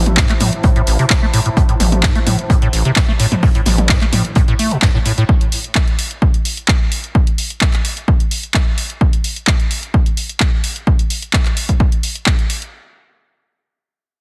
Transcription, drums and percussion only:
0.06 closed hi-hat medium
0.06 mid tom medium
0.17 kick loud
0.17 snare loud
0.17 clap loud
0.17 closed hi-hat medium
0.29 clap soft
0.29 closed hi-hat medium
0.40 closed hi-hat medium
0.40 open hi-hat loud
0.40 mid tom medium
0.53 closed hi-hat medium
0.63 kick loud
0.63 closed hi-hat medium
0.76 closed hi-hat soft
0.87 closed hi-hat medium
0.87 open hi-hat loud
0.99 closed hi-hat medium
0.99 closed hi-hat soft
1.10 kick loud
1.10 snare loud
1.10 clap loud
1.10 closed hi-hat medium
1.33 closed hi-hat medium
1.33 open hi-hat loud
1.46 closed hi-hat medium
1.57 kick loud
1.57 closed hi-hat medium
1.69 closed hi-hat soft
1.80 closed hi-hat medium
1.80 open hi-hat loud
1.80 mid tom medium
1.92 closed hi-hat medium
1.92 mid tom medium
2.03 kick loud
2.03 snare loud
2.03 clap loud
2.03 closed hi-hat medium
2.15 closed hi-hat soft
2.27 closed hi-hat medium
2.27 open hi-hat loud
2.27 mid tom medium
2.39 closed hi-hat medium
2.50 kick loud
2.50 closed hi-hat medium
2.62 closed hi-hat soft
2.73 closed hi-hat medium
2.73 open hi-hat loud
2.85 closed hi-hat medium
2.96 kick loud
2.96 snare loud
2.96 clap loud
2.96 closed hi-hat medium
3.19 closed hi-hat medium
3.19 open hi-hat loud
3.32 closed hi-hat medium
3.32 mid tom medium
3.43 kick loud
3.43 open hi-hat medium
3.55 closed hi-hat soft
3.66 snare soft
3.66 closed hi-hat medium
3.66 open hi-hat loud
3.66 mid tom medium
3.78 closed hi-hat medium
3.78 mid tom medium
3.89 kick loud
3.89 snare loud
3.89 clap loud
3.89 closed hi-hat medium
4.01 clap soft
4.01 closed hi-hat soft
4.13 closed hi-hat medium
4.13 open hi-hat loud
4.13 mid tom medium
4.25 closed hi-hat medium
4.35 kick loud
4.35 closed hi-hat medium
4.48 closed hi-hat soft
4.59 closed hi-hat medium
4.59 open hi-hat loud
4.70 closed hi-hat soft
4.70 closed hi-hat medium
4.82 kick loud
4.82 snare loud
4.82 clap loud
4.82 closed hi-hat medium
5.05 closed hi-hat medium
5.05 open hi-hat loud
5.18 closed hi-hat medium
5.29 kick loud
5.41 closed hi-hat soft
5.52 open hi-hat loud
5.64 closed hi-hat medium
5.75 kick loud
5.75 clap loud
5.88 closed hi-hat soft
5.99 open hi-hat loud
6.11 closed hi-hat medium
6.22 kick loud
6.34 closed hi-hat soft
6.45 open hi-hat loud
6.57 closed hi-hat medium
6.68 kick loud
6.68 clap loud
6.92 open hi-hat loud
7.04 closed hi-hat medium
7.15 kick loud
7.27 closed hi-hat medium
7.38 open hi-hat medium
7.50 closed hi-hat medium
7.61 kick loud
7.61 clap loud
7.73 clap soft
7.73 closed hi-hat soft
7.85 open hi-hat loud
7.97 closed hi-hat medium
8.08 kick loud
8.20 closed hi-hat soft
8.31 open hi-hat medium
8.43 closed hi-hat medium
8.54 kick loud
8.54 clap loud
8.78 open hi-hat medium
8.90 closed hi-hat medium
9.01 kick loud
9.13 closed hi-hat soft
9.24 open hi-hat medium
9.36 closed hi-hat medium
9.47 kick loud
9.47 clap loud
9.60 closed hi-hat soft
9.71 open hi-hat medium
9.83 closed hi-hat medium
9.94 kick loud
10.06 closed hi-hat soft
10.17 open hi-hat medium
10.29 closed hi-hat medium
10.40 kick loud
10.40 clap loud
10.64 open hi-hat medium
10.76 closed hi-hat medium
10.87 kick loud
10.99 closed hi-hat medium
11.10 open hi-hat loud
11.22 closed hi-hat medium
11.33 kick loud
11.33 clap loud
11.45 clap soft
11.45 closed hi-hat medium
11.57 open hi-hat loud
11.69 kick medium
11.69 closed hi-hat medium
11.80 kick loud
11.92 closed hi-hat soft
12.03 open hi-hat medium
12.15 closed hi-hat medium
12.26 kick loud
12.26 clap loud
12.39 closed hi-hat soft
12.50 open hi-hat medium
12.62 closed hi-hat medium

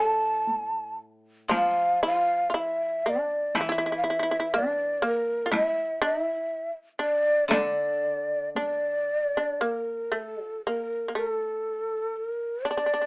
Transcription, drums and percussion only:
0.47 taiko high soft
1.51 taiko rim soft
1.51 taiko high medium
3.55 taiko rim medium
3.55 taiko high medium
4.54 taiko high soft
5.53 taiko rim medium
5.53 taiko high medium
7.51 taiko rim medium
7.51 taiko high medium
8.55 taiko high soft

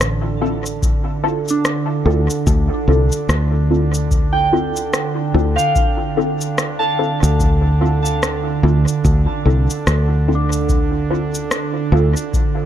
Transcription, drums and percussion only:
0.01 cross-stick medium
0.01 shaker soft
0.66 shaker medium
0.82 kick loud
0.82 shaker soft
1.48 shaker medium
1.65 cross-stick medium
1.65 shaker soft
2.30 shaker medium
2.47 kick loud
2.47 shaker soft
3.12 shaker medium
3.29 cross-stick medium
3.29 shaker soft
3.94 shaker medium
4.11 kick loud
4.11 shaker soft
4.76 shaker medium
4.93 cross-stick medium
4.93 shaker soft
5.59 shaker medium
5.76 kick loud
5.76 shaker soft
6.41 shaker soft
6.58 cross-stick medium
6.58 shaker soft
7.23 shaker medium
7.40 kick loud
7.40 shaker soft
8.06 shaker medium
8.23 cross-stick medium
8.23 shaker soft
8.88 shaker soft
9.05 kick loud
9.05 shaker soft
9.70 shaker soft
9.87 cross-stick medium
9.87 shaker soft
10.52 shaker medium
10.69 kick loud
10.69 shaker soft
11.35 shaker soft
11.51 cross-stick medium
11.51 shaker soft
12.17 shaker soft
12.34 kick loud
12.34 shaker soft

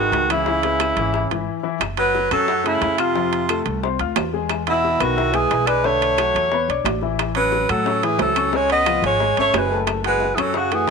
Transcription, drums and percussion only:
0.12 high bongo medium
0.12 low bongo medium
0.12 high timbale medium
0.30 high timbale medium
0.30 claves medium
0.46 high bongo medium
0.63 high bongo soft
0.63 high timbale medium
0.80 high bongo medium
0.80 high timbale medium
0.80 claves medium
0.97 high bongo soft
0.97 high timbale medium
1.14 high bongo medium
1.31 high timbale medium
1.81 high bongo medium
1.81 high timbale medium
1.81 claves medium
1.97 high bongo soft
1.97 high timbale medium
2.15 high bongo medium
2.31 high bongo soft
2.31 high timbale medium
2.31 claves medium
2.48 high bongo medium
2.65 high bongo soft
2.65 high timbale medium
2.82 high bongo medium
2.82 low bongo medium
2.82 high timbale medium
2.98 high timbale medium
2.98 claves medium
3.15 high bongo medium
3.33 high bongo soft
3.33 high timbale medium
3.49 high bongo medium
3.49 high timbale medium
3.49 claves medium
3.66 high bongo soft
3.66 high timbale medium
3.83 high bongo medium
3.99 high timbale medium
4.16 high bongo medium
4.16 low bongo medium
4.16 high timbale loud
4.16 low timbale medium
4.16 claves medium
4.34 high bongo soft
4.49 high bongo medium
4.49 high timbale medium
4.49 claves medium
4.67 high bongo soft
4.67 high timbale medium
4.85 high bongo medium
5.00 high bongo soft
5.00 high timbale medium
5.00 claves medium
5.18 high bongo medium
5.34 high bongo soft
5.34 high timbale medium
5.51 high bongo medium
5.51 low bongo medium
5.51 high timbale medium
5.67 high timbale medium
5.67 claves medium
5.84 high bongo medium
6.01 high bongo soft
6.01 high timbale medium
6.18 high bongo medium
6.18 high timbale medium
6.18 claves medium
6.35 high bongo soft
6.35 high timbale medium
6.52 high bongo medium
6.70 high timbale medium
6.85 high bongo medium
6.85 low bongo medium
6.85 high timbale loud
6.85 low timbale medium
6.85 claves medium
7.01 high bongo soft
7.19 high bongo medium
7.19 high timbale medium
7.19 claves medium
7.35 high bongo soft
7.35 high timbale medium
7.52 high bongo medium
7.69 high bongo soft
7.69 high timbale medium
7.69 claves medium
7.86 high bongo medium
8.02 high bongo soft
8.02 high timbale medium
8.19 high bongo medium
8.19 low bongo medium
8.19 high timbale medium
8.19 low timbale medium
8.36 high timbale medium
8.36 claves medium
8.53 high bongo medium
8.70 high bongo soft
8.70 high timbale medium
8.86 high bongo medium
8.86 high timbale medium
8.86 claves medium
9.04 high bongo soft
9.04 high timbale medium
9.20 high bongo medium
9.37 high timbale medium
9.54 high bongo medium
9.54 low bongo medium
9.54 high timbale medium
9.54 low timbale medium
9.54 claves medium
9.71 high bongo soft
9.87 high bongo medium
9.87 high timbale medium
9.87 claves medium
10.04 high bongo soft
10.04 high timbale medium
10.20 high bongo medium
10.37 high bongo soft
10.37 high timbale medium
10.37 claves medium
10.54 high bongo medium
10.70 high bongo soft
10.70 high timbale medium

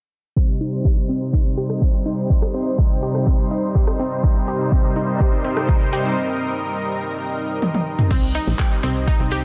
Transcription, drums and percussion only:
0.36 kick loud
0.36 closed hi-hat soft
0.61 open hi-hat medium
0.85 kick loud
0.85 closed hi-hat soft
1.09 open hi-hat medium
1.21 closed hi-hat soft
1.33 kick loud
1.33 closed hi-hat soft
1.57 open hi-hat medium
1.70 cross-stick medium
1.70 closed hi-hat soft
1.82 kick loud
1.82 closed hi-hat soft
2.06 open hi-hat medium
2.30 kick loud
2.30 closed hi-hat soft
2.42 cross-stick medium
2.54 open hi-hat medium
2.66 closed hi-hat soft
2.78 kick loud
2.78 closed hi-hat soft
2.91 closed hi-hat soft
3.03 open hi-hat loud
3.15 cross-stick soft
3.27 kick loud
3.27 closed hi-hat soft
3.39 closed hi-hat soft
3.51 open hi-hat loud
3.75 kick loud
3.75 closed hi-hat soft
3.87 cross-stick medium
3.87 closed hi-hat soft
3.99 open hi-hat loud
4.12 closed hi-hat soft
4.24 kick loud
4.24 maracas medium
4.36 closed hi-hat soft
4.36 maracas soft
4.48 open hi-hat loud
4.48 maracas medium
4.60 maracas soft
4.72 kick loud
4.72 closed hi-hat soft
4.72 maracas medium
4.84 closed hi-hat soft
4.84 maracas soft
4.96 open hi-hat loud
4.96 maracas medium
5.08 closed hi-hat soft
5.08 maracas soft
5.20 kick loud
5.20 closed hi-hat soft
5.20 maracas medium
5.33 closed hi-hat soft
5.33 maracas soft
5.44 open hi-hat loud
5.44 maracas medium
5.57 cross-stick medium
5.57 closed hi-hat soft
5.57 maracas soft
5.68 kick loud
5.68 closed hi-hat soft
5.68 maracas soft
5.81 closed hi-hat soft
5.81 maracas soft
5.93 open hi-hat loud
5.93 maracas medium
6.05 closed hi-hat soft
6.05 maracas soft
7.62 high tom medium
7.75 high tom medium
7.99 mid tom medium
8.11 kick loud
8.11 closed hi-hat soft
8.11 crash medium
8.11 maracas soft
8.23 closed hi-hat soft
8.23 maracas soft
8.35 open hi-hat medium
8.35 maracas medium
8.47 closed hi-hat medium
8.47 maracas soft
8.59 kick loud
8.59 clap loud
8.59 maracas soft
8.71 closed hi-hat soft
8.71 maracas soft
8.83 open hi-hat loud
8.83 maracas medium
8.95 closed hi-hat soft
8.95 maracas soft
9.07 kick loud
9.07 closed hi-hat medium
9.07 maracas medium
9.20 closed hi-hat soft
9.20 maracas soft
9.31 open hi-hat loud
9.31 maracas medium

